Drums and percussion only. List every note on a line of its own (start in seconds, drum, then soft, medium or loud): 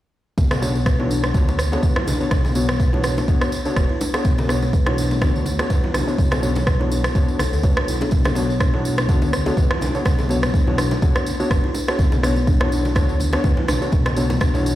0.38 kick loud
0.38 tambourine medium
0.38 low bongo medium
0.38 muted conga medium
0.51 cross-stick medium
0.51 tambourine soft
0.51 high bongo medium
0.51 high conga loud
0.62 tambourine medium
0.62 low bongo medium
0.75 tambourine soft
0.86 kick loud
0.86 cross-stick medium
0.86 tambourine soft
0.86 low bongo medium
0.86 muted conga soft
1.00 low conga medium
1.11 tambourine medium
1.24 cross-stick medium
1.24 tambourine soft
1.24 low bongo medium
1.24 muted conga medium
1.34 kick loud
1.34 tambourine medium
1.34 high conga medium
1.34 low conga medium
1.48 tambourine soft
1.48 low bongo medium
1.58 cross-stick medium
1.58 tambourine medium
1.58 muted conga soft
1.58 high conga medium
1.72 tambourine soft
1.72 high bongo medium
1.72 low bongo medium
1.83 kick loud
1.83 tambourine medium
1.96 cross-stick medium
1.96 muted conga soft
1.96 low conga loud
2.07 tambourine medium
2.07 low bongo medium
2.07 high conga loud
2.21 tambourine soft
2.31 kick loud
2.31 cross-stick medium
2.31 tambourine medium
2.31 low bongo loud
2.31 muted conga medium
2.45 tambourine soft
2.45 high bongo medium
2.45 high conga loud
2.55 tambourine medium
2.55 low bongo medium
2.69 cross-stick medium
2.69 tambourine soft
2.69 low conga medium
2.80 kick loud
2.80 tambourine medium
2.80 muted conga soft
2.80 high conga medium
2.93 low bongo medium
2.93 low conga loud
3.03 cross-stick medium
3.03 tambourine medium
3.17 tambourine soft
3.17 low bongo loud
3.17 muted conga soft
3.28 kick loud
3.28 tambourine soft
3.41 cross-stick medium
3.41 tambourine soft
3.41 low bongo medium
3.52 tambourine medium
3.52 muted conga soft
3.52 high conga medium
3.65 tambourine soft
3.65 high conga medium
3.76 kick loud
3.76 cross-stick medium
3.76 tambourine medium
3.76 low bongo medium
3.89 muted conga soft
4.01 tambourine loud
4.01 low bongo loud
4.14 cross-stick medium
4.14 high bongo medium
4.25 kick loud
4.25 tambourine medium
4.25 low bongo medium
4.25 muted conga soft
4.38 tambourine soft
4.38 high bongo medium
4.38 high conga loud
4.49 cross-stick medium
4.49 tambourine medium
4.62 tambourine soft
4.62 low bongo medium
4.73 kick loud
4.73 tambourine soft
4.73 muted conga soft
4.86 cross-stick medium
4.86 low bongo medium
4.86 low conga medium
4.98 tambourine medium
5.11 tambourine soft
5.11 low bongo medium
5.11 muted conga medium
5.21 kick loud
5.21 cross-stick medium
5.21 tambourine medium
5.21 high conga medium
5.21 low conga medium
5.36 tambourine soft
5.45 tambourine medium
5.45 low bongo medium
5.45 muted conga soft
5.45 high conga medium
5.59 cross-stick medium
5.59 tambourine soft
5.59 high bongo medium
5.70 kick loud
5.70 tambourine medium
5.70 low bongo medium
5.84 muted conga medium
5.84 low conga loud
5.94 cross-stick medium
5.94 tambourine medium
5.94 low bongo medium
5.94 high conga loud
6.08 tambourine soft
6.18 kick loud
6.18 tambourine medium
6.18 muted conga soft
6.31 cross-stick medium
6.31 tambourine soft
6.31 high bongo medium
6.31 low bongo medium
6.31 high conga loud
6.43 tambourine medium
6.55 tambourine soft
6.55 low bongo medium
6.55 low conga medium
6.67 kick loud
6.67 cross-stick medium
6.67 tambourine soft
6.67 muted conga soft
6.67 high conga medium
6.79 low bongo medium
6.79 low conga medium
6.91 tambourine medium
7.04 cross-stick medium
7.04 tambourine soft
7.04 muted conga soft
7.15 kick loud
7.15 tambourine soft
7.15 low bongo medium
7.28 tambourine soft
7.39 cross-stick medium
7.39 tambourine medium
7.39 low bongo medium
7.39 muted conga soft
7.39 high conga medium
7.53 tambourine soft
7.53 high conga medium
7.63 kick loud
7.63 tambourine medium
7.63 low bongo medium
7.77 cross-stick loud
7.77 muted conga soft
7.88 tambourine loud
8.01 tambourine soft
8.01 high bongo medium
8.01 low bongo medium
8.11 kick loud
8.11 tambourine medium
8.11 low bongo medium
8.11 muted conga soft
8.24 cross-stick medium
8.24 tambourine soft
8.24 high bongo medium
8.24 high conga loud
8.35 tambourine medium
8.35 low bongo medium
8.50 tambourine soft
8.60 kick loud
8.60 cross-stick medium
8.60 tambourine soft
8.60 low bongo medium
8.60 muted conga soft
8.74 low conga medium
8.85 tambourine medium
8.98 cross-stick medium
8.98 tambourine soft
8.98 low bongo medium
8.98 muted conga soft
9.09 kick loud
9.09 tambourine medium
9.09 high conga medium
9.09 low conga medium
9.22 tambourine soft
9.22 low bongo medium
9.33 cross-stick medium
9.33 tambourine medium
9.33 muted conga soft
9.33 high conga medium
9.46 tambourine soft
9.46 high bongo medium
9.46 low bongo medium
9.57 kick loud
9.57 tambourine medium
9.71 cross-stick medium
9.71 muted conga soft
9.71 low conga loud
9.81 tambourine medium
9.81 low bongo medium
9.81 high conga loud
9.95 tambourine soft
10.05 kick loud
10.05 cross-stick medium
10.05 tambourine soft
10.05 low bongo medium
10.05 muted conga soft
10.19 tambourine soft
10.19 high bongo medium
10.19 high conga medium
10.29 tambourine medium
10.29 low bongo medium
10.43 cross-stick medium
10.43 tambourine soft
10.43 low conga medium
10.54 kick loud
10.54 tambourine soft
10.54 muted conga soft
10.54 high conga medium
10.67 low bongo medium
10.67 low conga medium
10.78 cross-stick medium
10.78 tambourine medium
10.91 tambourine soft
10.91 low bongo medium
10.91 muted conga medium
11.02 kick loud
11.02 tambourine soft
11.15 cross-stick medium
11.15 tambourine soft
11.15 low bongo medium
11.26 tambourine medium
11.26 muted conga soft
11.26 high conga medium
11.40 tambourine soft
11.40 high conga medium
11.51 kick loud
11.51 cross-stick medium
11.51 tambourine soft
11.51 low bongo medium
11.64 muted conga medium
11.74 tambourine medium
11.74 low bongo medium
11.88 cross-stick medium
11.88 tambourine soft
11.88 high bongo medium
11.99 kick loud
11.99 tambourine medium
11.99 low bongo medium
11.99 muted conga medium
12.12 tambourine soft
12.12 high bongo medium
12.12 high conga medium
12.23 cross-stick medium
12.23 tambourine medium
12.36 tambourine soft
12.36 low bongo medium
12.47 kick medium
12.47 tambourine soft
12.47 muted conga soft
12.60 cross-stick medium
12.60 low bongo medium
12.60 low conga medium
12.72 tambourine medium
12.85 tambourine soft
12.85 low bongo medium
12.85 muted conga medium
12.95 kick loud
12.95 cross-stick medium
12.95 tambourine soft
12.95 high conga medium
12.95 low conga medium
13.09 tambourine soft
13.20 tambourine medium
13.20 low bongo medium
13.20 muted conga soft
13.20 high conga medium
13.33 cross-stick medium
13.33 tambourine soft
13.33 high bongo medium
13.44 kick loud
13.44 tambourine soft
13.44 low bongo medium
13.57 muted conga medium
13.57 low conga loud
13.68 cross-stick medium
13.68 tambourine medium
13.68 low bongo medium
13.68 high conga loud
13.82 tambourine soft
13.92 kick loud
13.92 tambourine soft
13.92 muted conga medium
14.06 cross-stick medium
14.06 tambourine soft
14.06 high bongo medium
14.06 low bongo medium
14.06 high conga loud
14.16 tambourine medium
14.30 tambourine soft
14.30 low bongo medium
14.30 low conga medium
14.40 kick loud
14.40 cross-stick medium
14.40 tambourine soft
14.40 muted conga soft
14.40 high conga medium
14.54 tambourine soft
14.54 low bongo medium
14.54 low conga medium
14.66 tambourine medium